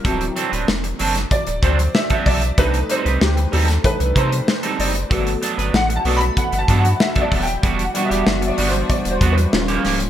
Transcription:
<<
  \new Staff \with { instrumentName = "Grand piano" } { \time 4/4 \key g \major \tempo 4 = 95 << { bes'16 r4. r16 d''8 c''8 e''8 d''8 | b'8 c''8 g'8 a'8 b'8 c''4 d''8~ | d''8 r8 \tuplet 3/2 { fis''8 a''8 b''8 fis''8 a''8 fis''8 e''8 d''8 g''8~ } | \tuplet 3/2 { g''8 fis''8 e''8~ e''8 d''8 c''8 d''8 c''8 b'8 } r4 | } \\ { <fis c' e'>1 | <a d' ees'>8 r4. <a d' ees'>8 r4. | <a b fis'>8 r4 <a b fis'>8 r2 | r8 <g d' fis'>4. r4 <g des' f'>4 | } >> }
  \new Staff \with { instrumentName = "Clean electric guitar" } { \time 4/4 \key g \major <fis c' d' a'>16 r16 <fis c' d' a'>16 <fis c' d' b'>16 r8 <fis c' d' a'>16 r8. <fis c' d' a'>16 r8 <fis c' d' a'>16 <fis c' d' a'>16 r16 | <g c' ees' a'>16 r16 <g c' ees' a'>16 <g c' ees' b'>16 r8 <g c' ees' a'>16 r8. <g c' ees' a'>16 r8 <g c' ees' a'>16 <g c' ees' a'>16 r16 | <fis b d' a'>16 r16 <fis b d' a'>16 <fis b d' b'>16 r8 <fis b d' a'>16 r8. <fis b d' a'>16 r8 <fis b d' a'>16 <fis b d' a'>16 r16 | <g b d' fis'>16 r16 <g b d' fis'>16 <g b d' g'>16 r8 <g b d' fis'>16 r8. <g b d' fis'>16 r8 <f bes des' g'>16 <f bes des' g'>16 r16 | }
  \new Staff \with { instrumentName = "String section" } { \time 4/4 \key g \major << { r1 | r1 | r1 | <e b d' fis'>2. <ees bes des' f'>4 | } \\ { r1 | r1 | r1 | g1 | } >> }
  \new Staff \with { instrumentName = "Sub bass" } { \clef bass \time 4/4 \key g \major d,,8 r16 d,,16 e,,8 fis,,8 r16 d,,16 d,8 r8 b,,8 | c,8 r16 c,16 d,8 ees,8 r16 c,16 c8 r8 fis,,8 | g,,8 r16 g,,16 a,,8 b,,8 r16 g,,16 g,8 r8 ees,,8 | e,,8 r16 e,,16 fis,,8 g,,8 r16 e,,16 e,8 ees,,8 des,,8 | }
  \new DrumStaff \with { instrumentName = "Drums" } \drummode { \time 4/4 <hh bd>16 hh16 hh16 hh16 sn16 hh16 hho16 <hh sn>16 <hh bd>16 hh16 <hh bd>16 hh16 sn16 <hh bd>16 <hho bd>16 hh16 | <hh bd>16 hh16 hh16 hh16 sn16 hh16 hho16 <hh sn>16 <hh bd>16 hh16 <hh bd>16 hh16 sn16 hh16 hho16 hh16 | <hh bd>16 hh16 hh16 hh16 sn16 hh16 hho16 hh16 <hh bd>16 hh16 <hh bd>16 hh16 sn16 <hh bd>16 <hho bd>16 hh16 | <hh bd>16 hh16 hh16 hh16 sn16 hh16 hho16 hh16 <hh bd>16 hh16 <hh bd>16 hh16 sn16 hh16 <hho sn>16 hh16 | }
>>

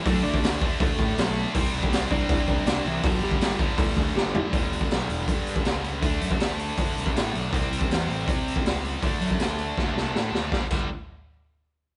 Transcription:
<<
  \new Staff \with { instrumentName = "Lead electric guitar" } { \time 4/4 \key d \mixolydian \tempo 4 = 160 <fis fis'>8 <d' d''>4 r8 <a a'>4 <a a'>8. r16 | r4. <d' d''>4. <d' d''>8 <e e'>8 | <fis fis'>8 <g g'>4 r8 <a a'>4 <g g'>8. r16 | r1 |
r1 | r1 | r1 | r1 | }
  \new Staff \with { instrumentName = "Distorted electric guitar" } { \clef bass \time 4/4 \key d \mixolydian <d a d'>4. <d a d'>2~ <d a d'>8 | <c g c'>4. <c g c'>2~ <c g c'>8 | <g, d g>4. <g, d g>2~ <g, d g>8 | <g, d g>1 |
<d a d'>1 | <c g c'>1 | <d a d'>1 | <g, d g>8 <g, d g>8 r2. | }
  \new Staff \with { instrumentName = "Picked electric bass" } { \clef bass \time 4/4 \key d \mixolydian d,8 d,8 d,4 d,8 a,8 b,,4 | c,8 c,8 c,8 c,8 c,8 c,8 c,8 c,8 | g,,8 g,,8 g,,4 g,,8 d,8 g,,4 | g,,8 g,,8 b,,8 e,,8 g,4 cis,4 |
d,8 fis,8 d,4 d,8 c,8 a,8 b,,8 | c,8 c,8 e,8 a,,8 c4 cis,4 | d,8 fis,8 d,4 d,8 c,8 a,8 d,8 | g,,8 g,,8 r2. | }
  \new DrumStaff \with { instrumentName = "Drums" } \drummode { \time 4/4 <hho bd>8. bd16 <hho sn>8 bd8 <hho bd>8 bd8 <hho sn>4 | <hho bd>8. bd16 <hho sn>8 bd8 <hho bd>8 bd8 <hho sn>4 | <hho bd>8. bd16 <hho sn>8 bd8 <hho bd>8 bd8 sn8 tomfh8 | <hho bd>8 hho16 bd16 <hho sn>8 hho8 <hho bd>8 hho16 bd16 <hho sn>8 hho8 |
<hho bd>8 hho16 bd16 <hho sn>8 hho8 <hho bd>8 hho16 bd16 <hho sn>8 hho8 | <hho bd>8 hho16 bd16 <hho sn>8 hho8 <hho bd>8 hho16 bd16 <hho sn>8 hho8 | <hho bd>8 hho16 bd16 <hho sn>8 hho8 <bd sn>8 sn8 sn8 sn8 | <bd sn>8 <cymc bd>8 r4 r4 r4 | }
>>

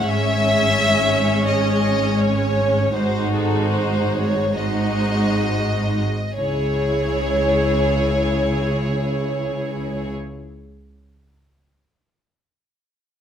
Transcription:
<<
  \new Staff \with { instrumentName = "Violin section" } { \time 4/4 \key cis \minor \tempo 4 = 35 e''4 dis''8 cis''8 bis'16 a'16 bis'16 cis''16 dis''4 | cis''1 | }
  \new Staff \with { instrumentName = "Violin section" } { \time 4/4 \key cis \minor <cis' cis''>2 <fis' bis'>4 <fis' bis'>4 | <gis' cis''>1 | }
  \new Staff \with { instrumentName = "Viola section" } { \time 4/4 \key cis \minor <gis cis'>2 <gis dis'>4 <gis dis'>4 | <gis e'>1 | }
  \new Staff \with { instrumentName = "Cello section" } { \clef bass \time 4/4 \key cis \minor gis,2 gis,2 | cis1 | }
  \new Staff \with { instrumentName = "Double bass section" } { \clef bass \time 4/4 \key cis \minor gis,,2 gis,,2 | cis,1 | }
>>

